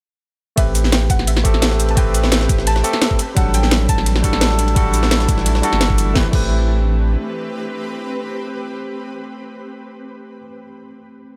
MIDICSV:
0, 0, Header, 1, 6, 480
1, 0, Start_track
1, 0, Tempo, 348837
1, 793, Time_signature, 4, 2, 24, 8
1, 15641, End_track
2, 0, Start_track
2, 0, Title_t, "Synth pluck"
2, 0, Program_c, 0, 84
2, 793, Note_on_c, 0, 76, 86
2, 1277, Note_on_c, 0, 79, 94
2, 1287, Note_off_c, 0, 76, 0
2, 1521, Note_on_c, 0, 78, 91
2, 1522, Note_off_c, 0, 79, 0
2, 1758, Note_on_c, 0, 76, 89
2, 1764, Note_off_c, 0, 78, 0
2, 2623, Note_on_c, 0, 81, 79
2, 2650, Note_off_c, 0, 76, 0
2, 2714, Note_off_c, 0, 81, 0
2, 2720, Note_on_c, 0, 79, 101
2, 3678, Note_on_c, 0, 81, 110
2, 3705, Note_off_c, 0, 79, 0
2, 4636, Note_on_c, 0, 78, 96
2, 4664, Note_off_c, 0, 81, 0
2, 4877, Note_on_c, 0, 79, 108
2, 4882, Note_off_c, 0, 78, 0
2, 5356, Note_on_c, 0, 81, 100
2, 5369, Note_off_c, 0, 79, 0
2, 6739, Note_off_c, 0, 81, 0
2, 15641, End_track
3, 0, Start_track
3, 0, Title_t, "Ambient pad"
3, 0, Program_c, 1, 92
3, 791, Note_on_c, 1, 67, 75
3, 793, Note_on_c, 1, 60, 82
3, 794, Note_on_c, 1, 71, 92
3, 4356, Note_off_c, 1, 67, 0
3, 4357, Note_off_c, 1, 60, 0
3, 4358, Note_off_c, 1, 71, 0
3, 4390, Note_on_c, 1, 52, 89
3, 4391, Note_on_c, 1, 64, 91
3, 4392, Note_on_c, 1, 57, 78
3, 4393, Note_on_c, 1, 62, 79
3, 8431, Note_off_c, 1, 52, 0
3, 8431, Note_off_c, 1, 64, 0
3, 8432, Note_off_c, 1, 57, 0
3, 8432, Note_off_c, 1, 62, 0
3, 8471, Note_on_c, 1, 60, 78
3, 8471, Note_on_c, 1, 67, 72
3, 8471, Note_on_c, 1, 71, 89
3, 13358, Note_off_c, 1, 60, 0
3, 13358, Note_off_c, 1, 67, 0
3, 13358, Note_off_c, 1, 71, 0
3, 15641, End_track
4, 0, Start_track
4, 0, Title_t, "Tine electric piano"
4, 0, Program_c, 2, 4
4, 771, Note_on_c, 2, 57, 90
4, 783, Note_on_c, 2, 60, 78
4, 795, Note_on_c, 2, 67, 82
4, 809, Note_on_c, 2, 71, 97
4, 1042, Control_c, 2, 64, 127
4, 1954, Note_off_c, 2, 57, 0
4, 1961, Note_off_c, 2, 60, 0
4, 1967, Note_off_c, 2, 67, 0
4, 1974, Note_off_c, 2, 71, 0
4, 1974, Note_on_c, 2, 57, 91
4, 1986, Note_on_c, 2, 60, 83
4, 1997, Note_on_c, 2, 67, 86
4, 2010, Note_on_c, 2, 69, 100
4, 2671, Note_off_c, 2, 57, 0
4, 2682, Note_off_c, 2, 60, 0
4, 2687, Note_on_c, 2, 57, 90
4, 2688, Note_off_c, 2, 67, 0
4, 2694, Note_off_c, 2, 69, 0
4, 2700, Note_on_c, 2, 60, 85
4, 2713, Note_on_c, 2, 67, 85
4, 2725, Note_on_c, 2, 71, 99
4, 3873, Note_off_c, 2, 57, 0
4, 3879, Note_off_c, 2, 60, 0
4, 3886, Note_off_c, 2, 67, 0
4, 3892, Note_off_c, 2, 71, 0
4, 3897, Note_on_c, 2, 57, 91
4, 3906, Note_on_c, 2, 60, 83
4, 3911, Note_on_c, 2, 67, 82
4, 3917, Note_on_c, 2, 69, 103
4, 4371, Note_off_c, 2, 57, 0
4, 4376, Note_off_c, 2, 60, 0
4, 4378, Note_off_c, 2, 67, 0
4, 4381, Note_off_c, 2, 69, 0
4, 4409, Control_c, 2, 64, 0
4, 4609, Note_on_c, 2, 55, 91
4, 4621, Note_on_c, 2, 62, 86
4, 4634, Note_on_c, 2, 54, 87
4, 4646, Note_on_c, 2, 69, 102
4, 4670, Control_c, 2, 64, 127
4, 5794, Note_off_c, 2, 55, 0
4, 5800, Note_off_c, 2, 62, 0
4, 5806, Note_off_c, 2, 54, 0
4, 5810, Note_on_c, 2, 55, 91
4, 5812, Note_off_c, 2, 69, 0
4, 5822, Note_on_c, 2, 62, 83
4, 5835, Note_on_c, 2, 66, 79
4, 5848, Note_on_c, 2, 69, 98
4, 6514, Note_off_c, 2, 55, 0
4, 6520, Note_off_c, 2, 62, 0
4, 6526, Note_off_c, 2, 66, 0
4, 6533, Note_off_c, 2, 69, 0
4, 6533, Note_on_c, 2, 55, 91
4, 6545, Note_on_c, 2, 62, 82
4, 6558, Note_on_c, 2, 66, 83
4, 6571, Note_on_c, 2, 69, 99
4, 7716, Note_off_c, 2, 55, 0
4, 7722, Note_off_c, 2, 62, 0
4, 7728, Note_off_c, 2, 66, 0
4, 7732, Note_on_c, 2, 55, 86
4, 7735, Note_off_c, 2, 69, 0
4, 7745, Note_on_c, 2, 62, 80
4, 7757, Note_on_c, 2, 66, 86
4, 7770, Note_on_c, 2, 69, 101
4, 8435, Note_off_c, 2, 55, 0
4, 8441, Note_off_c, 2, 62, 0
4, 8444, Note_on_c, 2, 57, 91
4, 8447, Note_off_c, 2, 66, 0
4, 8454, Note_off_c, 2, 69, 0
4, 8462, Note_on_c, 2, 60, 83
4, 8481, Note_on_c, 2, 67, 82
4, 8492, Control_c, 2, 64, 0
4, 8500, Note_on_c, 2, 71, 99
4, 8596, Note_off_c, 2, 57, 0
4, 8606, Note_off_c, 2, 60, 0
4, 8616, Note_off_c, 2, 67, 0
4, 8626, Note_off_c, 2, 71, 0
4, 8684, Note_on_c, 2, 57, 88
4, 8703, Note_on_c, 2, 60, 81
4, 8708, Control_c, 2, 64, 127
4, 8721, Note_on_c, 2, 67, 77
4, 8740, Note_on_c, 2, 71, 96
4, 14308, Note_off_c, 2, 57, 0
4, 14317, Note_off_c, 2, 60, 0
4, 14326, Note_off_c, 2, 67, 0
4, 14335, Note_off_c, 2, 71, 0
4, 15641, End_track
5, 0, Start_track
5, 0, Title_t, "Sub bass"
5, 0, Program_c, 3, 38
5, 793, Note_on_c, 3, 33, 101
5, 1495, Note_off_c, 3, 33, 0
5, 1513, Note_on_c, 3, 33, 88
5, 1975, Note_off_c, 3, 33, 0
5, 1991, Note_on_c, 3, 33, 83
5, 3414, Note_off_c, 3, 33, 0
5, 3432, Note_on_c, 3, 33, 95
5, 3894, Note_off_c, 3, 33, 0
5, 4631, Note_on_c, 3, 33, 104
5, 5334, Note_off_c, 3, 33, 0
5, 5352, Note_on_c, 3, 33, 91
5, 5814, Note_off_c, 3, 33, 0
5, 5833, Note_on_c, 3, 33, 79
5, 7255, Note_off_c, 3, 33, 0
5, 7273, Note_on_c, 3, 33, 94
5, 7735, Note_off_c, 3, 33, 0
5, 7878, Note_on_c, 3, 31, 96
5, 8454, Note_off_c, 3, 31, 0
5, 8473, Note_on_c, 3, 33, 96
5, 8611, Note_off_c, 3, 33, 0
5, 8712, Note_on_c, 3, 33, 99
5, 9858, Note_off_c, 3, 33, 0
5, 15641, End_track
6, 0, Start_track
6, 0, Title_t, "Drums"
6, 791, Note_on_c, 9, 51, 87
6, 792, Note_on_c, 9, 36, 119
6, 793, Note_on_c, 9, 42, 93
6, 929, Note_off_c, 9, 51, 0
6, 930, Note_off_c, 9, 36, 0
6, 930, Note_off_c, 9, 42, 0
6, 1032, Note_on_c, 9, 51, 68
6, 1033, Note_on_c, 9, 42, 71
6, 1033, Note_on_c, 9, 69, 58
6, 1160, Note_on_c, 9, 38, 37
6, 1170, Note_off_c, 9, 51, 0
6, 1171, Note_off_c, 9, 42, 0
6, 1171, Note_off_c, 9, 69, 0
6, 1271, Note_off_c, 9, 38, 0
6, 1271, Note_on_c, 9, 38, 126
6, 1271, Note_on_c, 9, 51, 91
6, 1273, Note_off_c, 9, 38, 0
6, 1273, Note_on_c, 9, 38, 123
6, 1273, Note_on_c, 9, 42, 94
6, 1409, Note_off_c, 9, 51, 0
6, 1411, Note_off_c, 9, 38, 0
6, 1411, Note_off_c, 9, 42, 0
6, 1511, Note_on_c, 9, 51, 72
6, 1513, Note_on_c, 9, 36, 104
6, 1515, Note_on_c, 9, 42, 73
6, 1515, Note_on_c, 9, 69, 61
6, 1642, Note_on_c, 9, 40, 35
6, 1648, Note_off_c, 9, 51, 0
6, 1650, Note_off_c, 9, 36, 0
6, 1652, Note_off_c, 9, 42, 0
6, 1652, Note_off_c, 9, 69, 0
6, 1753, Note_on_c, 9, 51, 91
6, 1755, Note_on_c, 9, 42, 98
6, 1779, Note_off_c, 9, 40, 0
6, 1879, Note_on_c, 9, 38, 51
6, 1882, Note_on_c, 9, 40, 58
6, 1890, Note_off_c, 9, 51, 0
6, 1893, Note_off_c, 9, 42, 0
6, 1991, Note_on_c, 9, 51, 69
6, 1992, Note_on_c, 9, 36, 61
6, 1996, Note_on_c, 9, 42, 71
6, 1996, Note_on_c, 9, 69, 58
6, 2016, Note_off_c, 9, 38, 0
6, 2019, Note_off_c, 9, 40, 0
6, 2120, Note_on_c, 9, 40, 51
6, 2129, Note_off_c, 9, 51, 0
6, 2130, Note_off_c, 9, 36, 0
6, 2133, Note_off_c, 9, 42, 0
6, 2133, Note_off_c, 9, 69, 0
6, 2230, Note_on_c, 9, 38, 114
6, 2230, Note_on_c, 9, 51, 89
6, 2234, Note_off_c, 9, 38, 0
6, 2234, Note_on_c, 9, 38, 112
6, 2234, Note_on_c, 9, 42, 92
6, 2258, Note_off_c, 9, 40, 0
6, 2357, Note_off_c, 9, 38, 0
6, 2357, Note_on_c, 9, 38, 49
6, 2368, Note_off_c, 9, 51, 0
6, 2372, Note_off_c, 9, 42, 0
6, 2470, Note_on_c, 9, 51, 69
6, 2474, Note_on_c, 9, 42, 70
6, 2474, Note_on_c, 9, 69, 64
6, 2495, Note_off_c, 9, 38, 0
6, 2596, Note_off_c, 9, 51, 0
6, 2596, Note_on_c, 9, 51, 45
6, 2611, Note_off_c, 9, 42, 0
6, 2611, Note_off_c, 9, 69, 0
6, 2709, Note_off_c, 9, 51, 0
6, 2709, Note_on_c, 9, 51, 90
6, 2712, Note_on_c, 9, 36, 126
6, 2714, Note_on_c, 9, 42, 96
6, 2847, Note_off_c, 9, 51, 0
6, 2849, Note_off_c, 9, 36, 0
6, 2852, Note_off_c, 9, 42, 0
6, 2950, Note_on_c, 9, 51, 66
6, 2954, Note_on_c, 9, 42, 68
6, 2954, Note_on_c, 9, 69, 59
6, 3075, Note_on_c, 9, 38, 49
6, 3079, Note_off_c, 9, 38, 0
6, 3079, Note_on_c, 9, 38, 38
6, 3087, Note_off_c, 9, 51, 0
6, 3091, Note_off_c, 9, 42, 0
6, 3091, Note_off_c, 9, 69, 0
6, 3190, Note_off_c, 9, 38, 0
6, 3190, Note_on_c, 9, 38, 123
6, 3190, Note_on_c, 9, 51, 88
6, 3193, Note_off_c, 9, 38, 0
6, 3193, Note_on_c, 9, 38, 121
6, 3193, Note_on_c, 9, 42, 95
6, 3317, Note_off_c, 9, 38, 0
6, 3317, Note_on_c, 9, 38, 60
6, 3327, Note_off_c, 9, 51, 0
6, 3331, Note_off_c, 9, 42, 0
6, 3431, Note_on_c, 9, 36, 106
6, 3431, Note_on_c, 9, 51, 74
6, 3433, Note_on_c, 9, 42, 67
6, 3433, Note_on_c, 9, 69, 57
6, 3454, Note_off_c, 9, 38, 0
6, 3556, Note_on_c, 9, 38, 46
6, 3568, Note_off_c, 9, 51, 0
6, 3569, Note_off_c, 9, 36, 0
6, 3571, Note_off_c, 9, 42, 0
6, 3571, Note_off_c, 9, 69, 0
6, 3671, Note_on_c, 9, 51, 92
6, 3673, Note_on_c, 9, 42, 93
6, 3693, Note_off_c, 9, 38, 0
6, 3796, Note_on_c, 9, 38, 47
6, 3809, Note_off_c, 9, 51, 0
6, 3810, Note_off_c, 9, 42, 0
6, 3911, Note_on_c, 9, 51, 68
6, 3913, Note_on_c, 9, 42, 68
6, 3913, Note_on_c, 9, 69, 56
6, 3934, Note_off_c, 9, 38, 0
6, 4035, Note_off_c, 9, 51, 0
6, 4035, Note_on_c, 9, 51, 45
6, 4039, Note_on_c, 9, 40, 51
6, 4051, Note_off_c, 9, 42, 0
6, 4051, Note_off_c, 9, 69, 0
6, 4149, Note_off_c, 9, 51, 0
6, 4149, Note_on_c, 9, 38, 114
6, 4149, Note_on_c, 9, 51, 89
6, 4151, Note_off_c, 9, 38, 0
6, 4151, Note_on_c, 9, 38, 117
6, 4151, Note_on_c, 9, 42, 91
6, 4177, Note_off_c, 9, 40, 0
6, 4277, Note_on_c, 9, 36, 63
6, 4287, Note_off_c, 9, 51, 0
6, 4289, Note_off_c, 9, 38, 0
6, 4289, Note_off_c, 9, 42, 0
6, 4390, Note_on_c, 9, 51, 72
6, 4393, Note_on_c, 9, 42, 71
6, 4393, Note_on_c, 9, 69, 64
6, 4415, Note_off_c, 9, 36, 0
6, 4528, Note_off_c, 9, 51, 0
6, 4530, Note_off_c, 9, 42, 0
6, 4530, Note_off_c, 9, 69, 0
6, 4631, Note_on_c, 9, 36, 127
6, 4631, Note_on_c, 9, 51, 87
6, 4632, Note_on_c, 9, 42, 85
6, 4769, Note_off_c, 9, 36, 0
6, 4769, Note_off_c, 9, 51, 0
6, 4770, Note_off_c, 9, 42, 0
6, 4871, Note_on_c, 9, 42, 64
6, 4871, Note_on_c, 9, 69, 59
6, 4872, Note_on_c, 9, 51, 72
6, 4997, Note_on_c, 9, 38, 39
6, 5009, Note_off_c, 9, 42, 0
6, 5009, Note_off_c, 9, 69, 0
6, 5010, Note_off_c, 9, 51, 0
6, 5110, Note_off_c, 9, 38, 0
6, 5110, Note_on_c, 9, 38, 125
6, 5110, Note_on_c, 9, 51, 90
6, 5111, Note_off_c, 9, 38, 0
6, 5111, Note_on_c, 9, 38, 127
6, 5111, Note_on_c, 9, 42, 94
6, 5248, Note_off_c, 9, 51, 0
6, 5249, Note_off_c, 9, 38, 0
6, 5249, Note_off_c, 9, 42, 0
6, 5351, Note_on_c, 9, 51, 73
6, 5352, Note_on_c, 9, 36, 108
6, 5353, Note_on_c, 9, 42, 66
6, 5353, Note_on_c, 9, 69, 58
6, 5478, Note_on_c, 9, 40, 35
6, 5489, Note_off_c, 9, 36, 0
6, 5489, Note_off_c, 9, 51, 0
6, 5490, Note_off_c, 9, 42, 0
6, 5490, Note_off_c, 9, 69, 0
6, 5591, Note_on_c, 9, 51, 96
6, 5592, Note_on_c, 9, 42, 91
6, 5616, Note_off_c, 9, 40, 0
6, 5718, Note_on_c, 9, 40, 57
6, 5719, Note_on_c, 9, 38, 51
6, 5728, Note_off_c, 9, 51, 0
6, 5729, Note_off_c, 9, 42, 0
6, 5832, Note_on_c, 9, 36, 68
6, 5833, Note_on_c, 9, 42, 60
6, 5833, Note_on_c, 9, 51, 71
6, 5833, Note_on_c, 9, 69, 57
6, 5856, Note_off_c, 9, 38, 0
6, 5856, Note_off_c, 9, 40, 0
6, 5959, Note_on_c, 9, 40, 51
6, 5970, Note_off_c, 9, 36, 0
6, 5971, Note_off_c, 9, 42, 0
6, 5971, Note_off_c, 9, 51, 0
6, 5971, Note_off_c, 9, 69, 0
6, 6071, Note_on_c, 9, 38, 124
6, 6071, Note_on_c, 9, 42, 89
6, 6072, Note_off_c, 9, 38, 0
6, 6072, Note_on_c, 9, 38, 119
6, 6072, Note_on_c, 9, 51, 90
6, 6097, Note_off_c, 9, 40, 0
6, 6200, Note_off_c, 9, 38, 0
6, 6200, Note_on_c, 9, 38, 50
6, 6209, Note_off_c, 9, 42, 0
6, 6210, Note_off_c, 9, 51, 0
6, 6312, Note_on_c, 9, 42, 70
6, 6312, Note_on_c, 9, 69, 59
6, 6313, Note_on_c, 9, 51, 70
6, 6338, Note_off_c, 9, 38, 0
6, 6439, Note_off_c, 9, 51, 0
6, 6439, Note_on_c, 9, 51, 48
6, 6449, Note_off_c, 9, 42, 0
6, 6449, Note_off_c, 9, 69, 0
6, 6553, Note_on_c, 9, 36, 126
6, 6553, Note_on_c, 9, 42, 92
6, 6554, Note_off_c, 9, 51, 0
6, 6554, Note_on_c, 9, 51, 90
6, 6690, Note_off_c, 9, 42, 0
6, 6691, Note_off_c, 9, 36, 0
6, 6692, Note_off_c, 9, 51, 0
6, 6793, Note_on_c, 9, 42, 63
6, 6793, Note_on_c, 9, 69, 57
6, 6795, Note_on_c, 9, 51, 70
6, 6919, Note_on_c, 9, 38, 38
6, 6920, Note_off_c, 9, 38, 0
6, 6920, Note_on_c, 9, 38, 51
6, 6930, Note_off_c, 9, 42, 0
6, 6930, Note_off_c, 9, 69, 0
6, 6932, Note_off_c, 9, 51, 0
6, 7034, Note_off_c, 9, 38, 0
6, 7034, Note_on_c, 9, 38, 125
6, 7034, Note_on_c, 9, 42, 88
6, 7035, Note_off_c, 9, 38, 0
6, 7035, Note_on_c, 9, 38, 126
6, 7035, Note_on_c, 9, 51, 92
6, 7160, Note_off_c, 9, 38, 0
6, 7160, Note_on_c, 9, 38, 59
6, 7160, Note_on_c, 9, 69, 27
6, 7171, Note_off_c, 9, 42, 0
6, 7173, Note_off_c, 9, 51, 0
6, 7273, Note_off_c, 9, 69, 0
6, 7273, Note_on_c, 9, 36, 109
6, 7273, Note_on_c, 9, 42, 63
6, 7273, Note_on_c, 9, 69, 57
6, 7274, Note_on_c, 9, 51, 71
6, 7298, Note_off_c, 9, 38, 0
6, 7399, Note_on_c, 9, 38, 45
6, 7410, Note_off_c, 9, 36, 0
6, 7410, Note_off_c, 9, 42, 0
6, 7410, Note_off_c, 9, 69, 0
6, 7412, Note_off_c, 9, 51, 0
6, 7512, Note_on_c, 9, 42, 92
6, 7513, Note_on_c, 9, 51, 98
6, 7536, Note_off_c, 9, 38, 0
6, 7639, Note_on_c, 9, 38, 51
6, 7649, Note_off_c, 9, 42, 0
6, 7650, Note_off_c, 9, 51, 0
6, 7752, Note_on_c, 9, 42, 61
6, 7752, Note_on_c, 9, 51, 72
6, 7752, Note_on_c, 9, 69, 57
6, 7776, Note_off_c, 9, 38, 0
6, 7879, Note_off_c, 9, 51, 0
6, 7879, Note_on_c, 9, 40, 49
6, 7879, Note_on_c, 9, 51, 45
6, 7889, Note_off_c, 9, 42, 0
6, 7889, Note_off_c, 9, 69, 0
6, 7992, Note_on_c, 9, 38, 121
6, 7992, Note_on_c, 9, 42, 88
6, 7993, Note_off_c, 9, 38, 0
6, 7993, Note_off_c, 9, 51, 0
6, 7993, Note_on_c, 9, 38, 115
6, 7993, Note_on_c, 9, 51, 89
6, 8017, Note_off_c, 9, 40, 0
6, 8118, Note_on_c, 9, 36, 61
6, 8129, Note_off_c, 9, 42, 0
6, 8131, Note_off_c, 9, 38, 0
6, 8131, Note_off_c, 9, 51, 0
6, 8232, Note_on_c, 9, 42, 64
6, 8232, Note_on_c, 9, 51, 70
6, 8232, Note_on_c, 9, 69, 62
6, 8256, Note_off_c, 9, 36, 0
6, 8369, Note_off_c, 9, 42, 0
6, 8369, Note_off_c, 9, 69, 0
6, 8370, Note_off_c, 9, 51, 0
6, 8470, Note_on_c, 9, 38, 84
6, 8472, Note_on_c, 9, 36, 116
6, 8607, Note_off_c, 9, 38, 0
6, 8610, Note_off_c, 9, 36, 0
6, 8712, Note_on_c, 9, 36, 114
6, 8712, Note_on_c, 9, 49, 88
6, 8849, Note_off_c, 9, 49, 0
6, 8850, Note_off_c, 9, 36, 0
6, 15641, End_track
0, 0, End_of_file